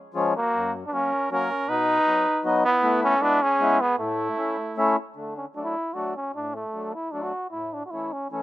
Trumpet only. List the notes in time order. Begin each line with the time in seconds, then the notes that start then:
0.37 F#4
0.88 B4
0.94 A#4
1.32 A#4
1.69 B4
2.67 E4
3.05 A4
3.23 B4
3.43 G#4
3.80 G#4
3.99 E4